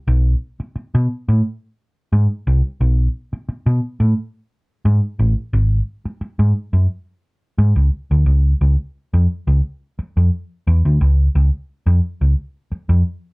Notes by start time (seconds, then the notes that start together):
0.07 B1
0.60 muted picked electric bass stroke
0.76 muted picked electric bass stroke
0.95 B2
1.28 A2
2.13 G#2
2.47 C2
2.81 B1
3.33 muted picked electric bass stroke
3.49 muted picked electric bass stroke
3.66 B2
4.00 A2
4.85 G#2
5.19 A1
5.53 G#1
6.05 muted picked electric bass stroke
6.21 muted picked electric bass stroke
6.39 G#2
6.73 F#2
7.58 G#2
7.76 C#2
8.11 D2
8.26 C#2
8.61 C#2
9.14 F2
9.47 C#2
9.99 muted picked electric bass stroke
10.17 F2
10.67 E2
10.85 D2
11.01 C#2
11.35 C#2
11.86 F2
12.21 C#2
12.72 muted picked electric bass stroke
12.89 F2